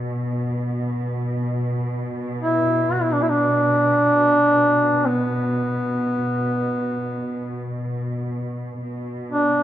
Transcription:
0.00 8.81 B2 soft
2.41 2.94 E4 medium
2.92 3.04 F#4 medium
3.02 3.14 E4 medium
3.12 3.23 D4 medium
3.22 3.31 E4 medium
3.29 5.07 D4 loud
5.06 7.87 B3 medium
8.82 9.63 B2 soft
9.32 9.63 D4 medium

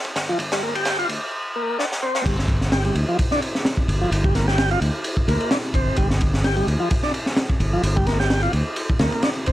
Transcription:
0.05 kick loud
0.16 0.31 G1 medium
0.16 snare loud
0.16 ride medium
0.29 0.38 F3 loud
0.39 1.03 G1 loud
0.39 kick medium
0.39 ride medium
0.52 0.62 G3 medium
0.52 snare loud
0.52 ride medium
0.63 0.74 A#3 medium
0.75 0.97 G4 medium
0.75 kick medium
0.75 ride medium
0.85 snare loud
0.85 ride medium
0.98 1.07 F4 loud
0.98 ride soft
1.09 1.17 D2 medium
1.09 ride medium
1.56 1.78 A#3 medium
1.79 1.85 D4 medium
1.79 snare medium
1.92 snare medium
2.02 2.24 C4 medium
2.15 snare medium
2.26 2.89 G1 loud
2.26 2.36 G3 medium
2.26 kick loud
2.26 crash medium
2.26 ride medium
2.39 snare soft
2.48 kick loud
2.48 ride medium
2.61 snare soft
2.72 2.84 G4 medium
2.72 snare loud
2.72 ride medium
2.85 2.95 G3 loud
2.85 ride soft
2.95 3.03 D2 medium
2.95 ride medium
3.09 3.17 F3 loud
3.19 kick loud
3.19 ride medium
3.31 3.40 D4 loud
3.31 snare soft
3.42 ride medium
3.55 snare soft
3.65 snare loud
3.65 ride medium
3.77 kick medium
3.88 4.04 G1 medium
3.88 ride medium
4.01 4.10 F3 loud
4.11 4.75 G1 loud
4.11 ride medium
4.24 4.34 G3 medium
4.24 kick loud
4.35 4.46 A#3 medium
4.35 snare soft
4.35 ride medium
4.48 4.70 G4 medium
4.48 snare soft
4.58 snare loud
4.58 ride medium
4.71 4.80 F4 loud
4.71 ride soft
4.81 4.89 D2 medium
4.81 ride medium
5.04 ride medium
5.17 kick medium
5.28 5.36 D2 medium
5.28 5.50 A#3 medium
5.28 ride medium
5.40 ride soft
5.51 5.58 D4 medium
5.51 snare loud
5.51 ride medium
5.74 5.90 G1 loud
5.74 5.97 C4 medium
5.74 kick loud
5.74 ride medium
5.96 6.61 G1 loud
5.96 6.08 G3 medium
5.96 kick loud
5.96 ride medium
6.10 snare medium
6.21 kick loud
6.21 ride medium
6.34 snare medium
6.44 6.56 G4 medium
6.44 snare loud
6.44 ride medium
6.57 6.67 G3 loud
6.57 ride soft
6.67 6.75 D2 medium
6.67 ride medium
6.80 6.89 F3 loud
6.91 kick loud
6.91 ride medium
7.03 7.12 D4 loud
7.03 snare soft
7.14 ride medium
7.26 snare soft
7.37 snare loud
7.37 ride medium
7.50 kick loud
7.60 7.76 G1 medium
7.60 ride medium
7.73 7.82 F3 loud
7.83 8.47 G1 loud
7.83 ride medium
7.96 8.06 G3 medium
7.96 kick medium
8.06 8.18 A#3 medium
8.06 snare soft
8.06 ride medium
8.20 8.42 G4 medium
8.20 snare soft
8.30 snare loud
8.30 ride medium
8.43 8.52 F4 loud
8.43 ride soft
8.53 8.61 D2 medium
8.53 ride medium
8.76 ride medium
8.90 kick loud
8.99 9.08 D2 loud
8.99 9.22 A#3 medium
8.99 snare loud
8.99 ride medium
9.12 ride soft
9.23 9.30 D4 medium
9.23 snare loud
9.23 ride medium
9.46 9.52 G1 loud
9.46 9.52 C4 medium
9.46 kick medium
9.46 ride medium

